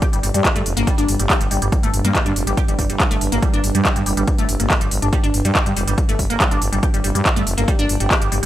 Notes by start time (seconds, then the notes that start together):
Already playing: G2
0.02 G4, kick, closed hi-hat
0.13 G1 G3, closed hi-hat
0.23 G1 G3, open hi-hat
0.34 G2 G3, closed hi-hat
0.45 kick, clap, closed hi-hat
0.56 G2 A3, closed hi-hat
0.66 F1, open hi-hat
0.77 G1 A#3, closed hi-hat
0.87 G3, kick, closed hi-hat
0.98 G1 D4, closed hi-hat
1.08 G1, open hi-hat
1.19 G1 G3, closed hi-hat
1.30 G4, kick, clap, open hi-hat
1.41 G1 G3, closed hi-hat
1.51 G1 G3, open hi-hat
1.62 G1 G3, closed hi-hat
1.72 kick, closed hi-hat
1.83 G1 A3, closed hi-hat
1.93 G1, open hi-hat
2.04 G2 A#3, closed hi-hat
2.15 G3, kick, clap, closed hi-hat
2.26 G2 D4, closed hi-hat
2.36 F1, open hi-hat
2.47 G1 G3, closed hi-hat
2.57 G4, kick, closed hi-hat
2.68 G1 G3, closed hi-hat
2.79 G1 G3, kick, open hi-hat
2.89 G1 G3, closed hi-hat
3.00 kick, clap, closed hi-hat
3.11 G1 A3, closed hi-hat
3.21 G1, open hi-hat
3.32 G1 A#3, closed hi-hat
3.42 G3, kick, closed hi-hat
3.53 G1 D4, closed hi-hat
3.64 G1, open hi-hat
3.75 G2 G3, closed hi-hat
3.85 G4, kick, clap, closed hi-hat
3.96 G2 G3, closed hi-hat
4.06 F1 G3, open hi-hat
4.17 G1 G3, closed hi-hat
4.27 kick, closed hi-hat
4.38 G1 A3, closed hi-hat
4.49 G1, open hi-hat
4.60 G1 A#3, closed hi-hat
4.70 F3, kick, clap, open hi-hat
4.81 G1 G3, closed hi-hat
4.91 G1, open hi-hat
5.02 G1 D4, closed hi-hat
5.13 G3, kick, closed hi-hat
5.24 G1 D4, closed hi-hat
5.34 G1, open hi-hat
5.45 G2 G3, closed hi-hat
5.55 G4, kick, clap, closed hi-hat
5.66 G2 G3, closed hi-hat
5.76 F1 G3, open hi-hat
5.87 G1 G3, closed hi-hat
5.98 kick, closed hi-hat
6.09 G1 A3, closed hi-hat
6.19 G1, kick, open hi-hat
6.30 G1 A#3, closed hi-hat
6.40 G3, kick, clap, closed hi-hat
6.51 G1 D4, closed hi-hat
6.62 G1, open hi-hat
6.72 G1 G3, closed hi-hat
6.83 G4, kick, closed hi-hat
6.94 G1 G3, closed hi-hat
7.04 G1 G3, open hi-hat
7.15 G2 G3, closed hi-hat
7.25 kick, clap, closed hi-hat
7.36 G2 A3, closed hi-hat
7.47 F1, open hi-hat
7.57 G1 A#3, closed hi-hat
7.68 G3, kick, closed hi-hat
7.79 G1 D4, closed hi-hat
7.89 G1, open hi-hat
8.00 G1 G3, closed hi-hat
8.10 G4, kick, clap, open hi-hat
8.21 G1 G3, closed hi-hat
8.32 G1 G3, open hi-hat